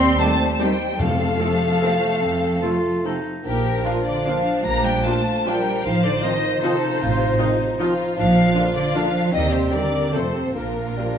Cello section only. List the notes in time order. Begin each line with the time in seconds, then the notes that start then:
Already playing: C4
0.20 A3
0.61 G3
1.00 F3
3.46 A#2
4.07 D3
4.27 F3
4.66 A#3
4.85 G3
5.06 A3
5.47 G3
5.85 F3
6.04 D3
6.23 D#3
6.63 C3
8.17 F3
8.75 D3
8.95 F3
9.33 D#3
9.52 C3
9.71 D3
10.14 C3
10.55 A#2